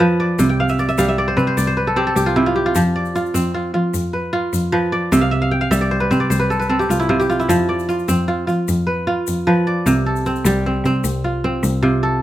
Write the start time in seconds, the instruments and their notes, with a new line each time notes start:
Already playing: cello F2, kora F4
0.00 kora F3 B4
0.20 kora D5
0.39 cello C2, kora C3, shaker
0.49 kora G5
0.60 kora F5
0.69 kora E5, shaker
0.78 kora D5, shaker
0.89 kora E5, shaker
0.98 cello C2, kora G3 F5, shaker
1.08 kora E5
1.18 kora D5
1.28 kora C5
1.37 cello C3, kora C4 B4, shaker
1.47 kora C5
1.57 cello C2, kora D5, shaker
1.67 kora C5
1.77 kora B4
1.87 kora A4
1.96 kora C4 G4
2.07 kora A4
2.16 cello C2, kora G4, shaker
2.26 kora F4
2.36 kora C3 E4
2.46 kora F4
2.56 kora G4
2.66 kora F4
2.75 cello F2, kora F3, shaker
2.96 kora D5
3.05 shaker
3.15 kora F4, shaker
3.26 shaker
3.34 cello F2, kora C4, shaker
3.54 kora F4
3.74 cello F3, kora F4
3.94 cello F2, shaker
4.13 kora B4
4.33 kora F4
4.53 cello F2, shaker
4.72 kora F3 B4
4.92 kora D5
5.12 cello C2, kora C3 E5, shaker
5.21 kora F5
5.31 kora E5
5.42 kora F5
5.51 kora G5
5.61 kora F5
5.71 cello C2, kora G3 E5, shaker
5.81 kora D5
5.91 kora C5
6.00 kora B4
6.11 cello C3, kora C4 C5, shaker
6.20 kora D5
6.30 cello C2, kora C5, shaker
6.39 kora B4
6.50 kora A4, shaker
6.60 kora B4, shaker
6.69 kora C4 A4
6.79 kora G4, shaker
6.89 cello C2, kora F4, shaker
7.00 kora E4, shaker
7.09 kora C3 F4
7.20 kora G4, shaker
7.30 kora F4, shaker
7.40 kora E4, shaker
7.49 cello F2, kora F3, shaker
7.69 kora D5
7.79 shaker
7.89 kora F4, shaker
7.99 shaker
8.08 cello F2, kora C4, shaker
8.28 kora F4
8.47 cello F3, kora F4, shaker
8.68 cello F2, shaker
8.87 kora B4
9.07 kora F4
9.27 cello F2, shaker
9.47 kora F3 B4
9.67 kora D5
9.86 cello C2, kora C3, shaker
10.06 kora A4
10.16 shaker
10.26 kora C4, shaker
10.36 shaker
10.45 cello C2, kora G3, shaker
10.66 kora C4
10.84 cello C3, kora C4, shaker
11.04 cello C2, shaker
11.24 kora F4
11.44 kora C4
11.63 cello C2, shaker
11.83 kora C3 F4
12.03 kora A4